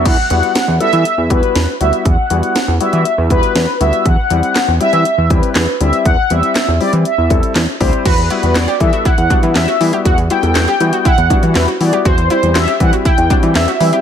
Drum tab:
CC |x---------------|----------------|----------------|----------------|
HH |x-xxx-xxx-xxx-xx|x-xxx-xxx-xxx-xx|x-xxx-xxx-xxx-xx|x-xxx-oxx-xxx-ox|
CP |----------------|----------------|----x-------x---|----x-------x---|
SD |----o-------o---|----o-------o---|----o-------o---|----o-------o---|
BD |o---------o-----|o---------o-----|o---------o-----|o---------o---o-|

CC |x---------------|----------------|----------------|
HH |xxxxxxxxxxxxxxox|xxxxxxxxxxxxxxox|xxxxxxxxxxxxxxox|
CP |----x-------x---|----x-------x---|----x-------x---|
SD |----o-------o---|----o-------o---|----o-------o---|
BD |o-----o-o-o-----|o-------o-o-----|o-----o-o-o-----|